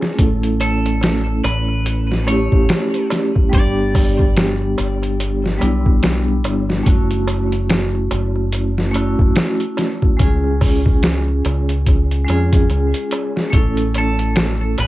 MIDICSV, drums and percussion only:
0, 0, Header, 1, 3, 480
1, 0, Start_track
1, 0, Tempo, 833333
1, 112, Time_signature, 4, 2, 24, 8
1, 8565, End_track
2, 0, Start_track
2, 0, Title_t, "Darbuka"
2, 8, Note_on_c, 9, 63, 39
2, 65, Note_off_c, 9, 63, 0
2, 108, Note_on_c, 9, 63, 50
2, 165, Note_off_c, 9, 63, 0
2, 252, Note_on_c, 9, 63, 22
2, 310, Note_off_c, 9, 63, 0
2, 349, Note_on_c, 9, 63, 78
2, 407, Note_off_c, 9, 63, 0
2, 494, Note_on_c, 9, 63, 37
2, 552, Note_off_c, 9, 63, 0
2, 583, Note_on_c, 9, 63, 51
2, 641, Note_off_c, 9, 63, 0
2, 731, Note_on_c, 9, 63, 27
2, 788, Note_off_c, 9, 63, 0
2, 832, Note_on_c, 9, 63, 96
2, 889, Note_off_c, 9, 63, 0
2, 969, Note_on_c, 9, 63, 37
2, 1027, Note_off_c, 9, 63, 0
2, 1069, Note_on_c, 9, 63, 46
2, 1127, Note_off_c, 9, 63, 0
2, 1215, Note_on_c, 9, 63, 25
2, 1272, Note_off_c, 9, 63, 0
2, 1310, Note_on_c, 9, 63, 81
2, 1368, Note_off_c, 9, 63, 0
2, 1457, Note_on_c, 9, 63, 36
2, 1515, Note_off_c, 9, 63, 0
2, 1557, Note_on_c, 9, 63, 44
2, 1614, Note_off_c, 9, 63, 0
2, 1690, Note_on_c, 9, 63, 26
2, 1747, Note_off_c, 9, 63, 0
2, 1788, Note_on_c, 9, 63, 106
2, 1845, Note_off_c, 9, 63, 0
2, 1931, Note_on_c, 9, 63, 36
2, 1989, Note_off_c, 9, 63, 0
2, 2034, Note_on_c, 9, 63, 45
2, 2091, Note_off_c, 9, 63, 0
2, 2183, Note_on_c, 9, 63, 27
2, 2241, Note_off_c, 9, 63, 0
2, 2275, Note_on_c, 9, 63, 82
2, 2332, Note_off_c, 9, 63, 0
2, 2423, Note_on_c, 9, 63, 39
2, 2481, Note_off_c, 9, 63, 0
2, 2515, Note_on_c, 9, 63, 46
2, 2573, Note_off_c, 9, 63, 0
2, 2655, Note_on_c, 9, 63, 25
2, 2713, Note_off_c, 9, 63, 0
2, 2752, Note_on_c, 9, 63, 89
2, 2810, Note_off_c, 9, 63, 0
2, 2894, Note_on_c, 9, 63, 44
2, 2952, Note_off_c, 9, 63, 0
2, 2995, Note_on_c, 9, 63, 50
2, 3052, Note_off_c, 9, 63, 0
2, 3132, Note_on_c, 9, 63, 26
2, 3190, Note_off_c, 9, 63, 0
2, 3232, Note_on_c, 9, 63, 80
2, 3290, Note_off_c, 9, 63, 0
2, 3377, Note_on_c, 9, 63, 39
2, 3434, Note_off_c, 9, 63, 0
2, 3472, Note_on_c, 9, 63, 49
2, 3529, Note_off_c, 9, 63, 0
2, 3619, Note_on_c, 9, 63, 24
2, 3677, Note_off_c, 9, 63, 0
2, 3715, Note_on_c, 9, 63, 91
2, 3773, Note_off_c, 9, 63, 0
2, 3855, Note_on_c, 9, 63, 38
2, 3912, Note_off_c, 9, 63, 0
2, 3957, Note_on_c, 9, 63, 49
2, 4015, Note_off_c, 9, 63, 0
2, 4094, Note_on_c, 9, 63, 27
2, 4152, Note_off_c, 9, 63, 0
2, 4191, Note_on_c, 9, 63, 88
2, 4248, Note_off_c, 9, 63, 0
2, 4335, Note_on_c, 9, 63, 34
2, 4392, Note_off_c, 9, 63, 0
2, 4435, Note_on_c, 9, 63, 44
2, 4492, Note_off_c, 9, 63, 0
2, 4577, Note_on_c, 9, 63, 27
2, 4634, Note_off_c, 9, 63, 0
2, 4671, Note_on_c, 9, 63, 80
2, 4729, Note_off_c, 9, 63, 0
2, 4813, Note_on_c, 9, 63, 35
2, 4871, Note_off_c, 9, 63, 0
2, 4921, Note_on_c, 9, 63, 46
2, 4979, Note_off_c, 9, 63, 0
2, 5057, Note_on_c, 9, 63, 23
2, 5115, Note_off_c, 9, 63, 0
2, 5158, Note_on_c, 9, 63, 79
2, 5216, Note_off_c, 9, 63, 0
2, 5307, Note_on_c, 9, 63, 36
2, 5365, Note_off_c, 9, 63, 0
2, 5401, Note_on_c, 9, 63, 51
2, 5459, Note_off_c, 9, 63, 0
2, 5532, Note_on_c, 9, 63, 24
2, 5590, Note_off_c, 9, 63, 0
2, 5629, Note_on_c, 9, 63, 76
2, 5686, Note_off_c, 9, 63, 0
2, 5772, Note_on_c, 9, 63, 35
2, 5830, Note_off_c, 9, 63, 0
2, 5871, Note_on_c, 9, 63, 49
2, 5929, Note_off_c, 9, 63, 0
2, 6014, Note_on_c, 9, 63, 24
2, 6071, Note_off_c, 9, 63, 0
2, 6112, Note_on_c, 9, 63, 80
2, 6170, Note_off_c, 9, 63, 0
2, 6259, Note_on_c, 9, 63, 33
2, 6317, Note_off_c, 9, 63, 0
2, 6357, Note_on_c, 9, 63, 42
2, 6414, Note_off_c, 9, 63, 0
2, 6497, Note_on_c, 9, 63, 25
2, 6554, Note_off_c, 9, 63, 0
2, 6600, Note_on_c, 9, 63, 75
2, 6657, Note_off_c, 9, 63, 0
2, 6740, Note_on_c, 9, 63, 33
2, 6798, Note_off_c, 9, 63, 0
2, 6845, Note_on_c, 9, 63, 47
2, 6903, Note_off_c, 9, 63, 0
2, 6982, Note_on_c, 9, 63, 21
2, 7040, Note_off_c, 9, 63, 0
2, 7083, Note_on_c, 9, 63, 83
2, 7141, Note_off_c, 9, 63, 0
2, 7219, Note_on_c, 9, 63, 37
2, 7276, Note_off_c, 9, 63, 0
2, 7318, Note_on_c, 9, 63, 46
2, 7376, Note_off_c, 9, 63, 0
2, 7459, Note_on_c, 9, 63, 22
2, 7516, Note_off_c, 9, 63, 0
2, 7560, Note_on_c, 9, 63, 91
2, 7617, Note_off_c, 9, 63, 0
2, 7695, Note_on_c, 9, 63, 35
2, 7753, Note_off_c, 9, 63, 0
2, 7799, Note_on_c, 9, 63, 48
2, 7857, Note_off_c, 9, 63, 0
2, 7931, Note_on_c, 9, 63, 24
2, 7989, Note_off_c, 9, 63, 0
2, 8038, Note_on_c, 9, 63, 69
2, 8095, Note_off_c, 9, 63, 0
2, 8173, Note_on_c, 9, 63, 33
2, 8230, Note_off_c, 9, 63, 0
2, 8269, Note_on_c, 9, 63, 43
2, 8326, Note_off_c, 9, 63, 0
2, 8413, Note_on_c, 9, 63, 25
2, 8471, Note_off_c, 9, 63, 0
2, 8515, Note_on_c, 9, 63, 79
2, 8565, Note_off_c, 9, 63, 0
2, 8565, End_track
3, 0, Start_track
3, 0, Title_t, "Drums"
3, 15, Note_on_c, 9, 38, 43
3, 72, Note_off_c, 9, 38, 0
3, 108, Note_on_c, 9, 42, 79
3, 109, Note_on_c, 9, 36, 98
3, 166, Note_off_c, 9, 36, 0
3, 166, Note_off_c, 9, 42, 0
3, 251, Note_on_c, 9, 42, 43
3, 308, Note_off_c, 9, 42, 0
3, 350, Note_on_c, 9, 42, 65
3, 407, Note_off_c, 9, 42, 0
3, 494, Note_on_c, 9, 42, 41
3, 552, Note_off_c, 9, 42, 0
3, 592, Note_on_c, 9, 42, 82
3, 597, Note_on_c, 9, 38, 107
3, 650, Note_off_c, 9, 42, 0
3, 655, Note_off_c, 9, 38, 0
3, 832, Note_on_c, 9, 42, 66
3, 890, Note_off_c, 9, 42, 0
3, 1071, Note_on_c, 9, 42, 81
3, 1129, Note_off_c, 9, 42, 0
3, 1219, Note_on_c, 9, 38, 36
3, 1276, Note_off_c, 9, 38, 0
3, 1312, Note_on_c, 9, 42, 64
3, 1369, Note_off_c, 9, 42, 0
3, 1452, Note_on_c, 9, 36, 85
3, 1510, Note_off_c, 9, 36, 0
3, 1549, Note_on_c, 9, 42, 80
3, 1554, Note_on_c, 9, 38, 107
3, 1607, Note_off_c, 9, 42, 0
3, 1612, Note_off_c, 9, 38, 0
3, 1693, Note_on_c, 9, 42, 43
3, 1751, Note_off_c, 9, 42, 0
3, 1793, Note_on_c, 9, 42, 63
3, 1798, Note_on_c, 9, 38, 36
3, 1851, Note_off_c, 9, 42, 0
3, 1856, Note_off_c, 9, 38, 0
3, 1934, Note_on_c, 9, 36, 86
3, 1992, Note_off_c, 9, 36, 0
3, 2033, Note_on_c, 9, 42, 83
3, 2034, Note_on_c, 9, 36, 102
3, 2091, Note_off_c, 9, 36, 0
3, 2091, Note_off_c, 9, 42, 0
3, 2274, Note_on_c, 9, 36, 92
3, 2275, Note_on_c, 9, 46, 78
3, 2331, Note_off_c, 9, 36, 0
3, 2332, Note_off_c, 9, 46, 0
3, 2414, Note_on_c, 9, 36, 88
3, 2472, Note_off_c, 9, 36, 0
3, 2514, Note_on_c, 9, 42, 85
3, 2519, Note_on_c, 9, 38, 107
3, 2572, Note_off_c, 9, 42, 0
3, 2577, Note_off_c, 9, 38, 0
3, 2755, Note_on_c, 9, 42, 63
3, 2812, Note_off_c, 9, 42, 0
3, 2898, Note_on_c, 9, 42, 43
3, 2956, Note_off_c, 9, 42, 0
3, 2996, Note_on_c, 9, 42, 81
3, 3054, Note_off_c, 9, 42, 0
3, 3143, Note_on_c, 9, 38, 36
3, 3200, Note_off_c, 9, 38, 0
3, 3236, Note_on_c, 9, 42, 61
3, 3293, Note_off_c, 9, 42, 0
3, 3375, Note_on_c, 9, 36, 86
3, 3432, Note_off_c, 9, 36, 0
3, 3473, Note_on_c, 9, 42, 86
3, 3478, Note_on_c, 9, 38, 112
3, 3530, Note_off_c, 9, 42, 0
3, 3535, Note_off_c, 9, 38, 0
3, 3712, Note_on_c, 9, 42, 66
3, 3770, Note_off_c, 9, 42, 0
3, 3859, Note_on_c, 9, 38, 40
3, 3917, Note_off_c, 9, 38, 0
3, 3953, Note_on_c, 9, 36, 104
3, 3954, Note_on_c, 9, 42, 80
3, 4011, Note_off_c, 9, 36, 0
3, 4012, Note_off_c, 9, 42, 0
3, 4094, Note_on_c, 9, 42, 42
3, 4152, Note_off_c, 9, 42, 0
3, 4192, Note_on_c, 9, 42, 63
3, 4250, Note_off_c, 9, 42, 0
3, 4333, Note_on_c, 9, 42, 40
3, 4391, Note_off_c, 9, 42, 0
3, 4432, Note_on_c, 9, 42, 83
3, 4438, Note_on_c, 9, 38, 105
3, 4490, Note_off_c, 9, 42, 0
3, 4495, Note_off_c, 9, 38, 0
3, 4672, Note_on_c, 9, 42, 66
3, 4729, Note_off_c, 9, 42, 0
3, 4910, Note_on_c, 9, 42, 85
3, 4968, Note_off_c, 9, 42, 0
3, 5058, Note_on_c, 9, 38, 38
3, 5115, Note_off_c, 9, 38, 0
3, 5151, Note_on_c, 9, 42, 60
3, 5209, Note_off_c, 9, 42, 0
3, 5293, Note_on_c, 9, 36, 88
3, 5351, Note_off_c, 9, 36, 0
3, 5389, Note_on_c, 9, 42, 80
3, 5395, Note_on_c, 9, 38, 115
3, 5447, Note_off_c, 9, 42, 0
3, 5452, Note_off_c, 9, 38, 0
3, 5531, Note_on_c, 9, 42, 44
3, 5588, Note_off_c, 9, 42, 0
3, 5633, Note_on_c, 9, 42, 65
3, 5638, Note_on_c, 9, 38, 40
3, 5690, Note_off_c, 9, 42, 0
3, 5696, Note_off_c, 9, 38, 0
3, 5774, Note_on_c, 9, 36, 89
3, 5831, Note_off_c, 9, 36, 0
3, 5872, Note_on_c, 9, 42, 79
3, 5873, Note_on_c, 9, 36, 97
3, 5929, Note_off_c, 9, 42, 0
3, 5930, Note_off_c, 9, 36, 0
3, 6113, Note_on_c, 9, 36, 83
3, 6113, Note_on_c, 9, 46, 76
3, 6171, Note_off_c, 9, 36, 0
3, 6171, Note_off_c, 9, 46, 0
3, 6254, Note_on_c, 9, 36, 83
3, 6312, Note_off_c, 9, 36, 0
3, 6351, Note_on_c, 9, 42, 83
3, 6357, Note_on_c, 9, 38, 113
3, 6409, Note_off_c, 9, 42, 0
3, 6414, Note_off_c, 9, 38, 0
3, 6594, Note_on_c, 9, 42, 65
3, 6651, Note_off_c, 9, 42, 0
3, 6734, Note_on_c, 9, 42, 42
3, 6791, Note_off_c, 9, 42, 0
3, 6834, Note_on_c, 9, 36, 95
3, 6834, Note_on_c, 9, 42, 75
3, 6892, Note_off_c, 9, 36, 0
3, 6892, Note_off_c, 9, 42, 0
3, 6977, Note_on_c, 9, 42, 35
3, 7035, Note_off_c, 9, 42, 0
3, 7074, Note_on_c, 9, 42, 57
3, 7131, Note_off_c, 9, 42, 0
3, 7215, Note_on_c, 9, 36, 92
3, 7215, Note_on_c, 9, 42, 72
3, 7272, Note_off_c, 9, 36, 0
3, 7272, Note_off_c, 9, 42, 0
3, 7313, Note_on_c, 9, 42, 36
3, 7371, Note_off_c, 9, 42, 0
3, 7454, Note_on_c, 9, 42, 62
3, 7511, Note_off_c, 9, 42, 0
3, 7552, Note_on_c, 9, 42, 65
3, 7610, Note_off_c, 9, 42, 0
3, 7700, Note_on_c, 9, 38, 38
3, 7757, Note_off_c, 9, 38, 0
3, 7793, Note_on_c, 9, 36, 109
3, 7793, Note_on_c, 9, 42, 77
3, 7850, Note_off_c, 9, 42, 0
3, 7851, Note_off_c, 9, 36, 0
3, 7933, Note_on_c, 9, 42, 43
3, 7990, Note_off_c, 9, 42, 0
3, 8032, Note_on_c, 9, 42, 66
3, 8090, Note_off_c, 9, 42, 0
3, 8174, Note_on_c, 9, 42, 38
3, 8231, Note_off_c, 9, 42, 0
3, 8270, Note_on_c, 9, 42, 85
3, 8275, Note_on_c, 9, 38, 115
3, 8327, Note_off_c, 9, 42, 0
3, 8333, Note_off_c, 9, 38, 0
3, 8512, Note_on_c, 9, 42, 68
3, 8565, Note_off_c, 9, 42, 0
3, 8565, End_track
0, 0, End_of_file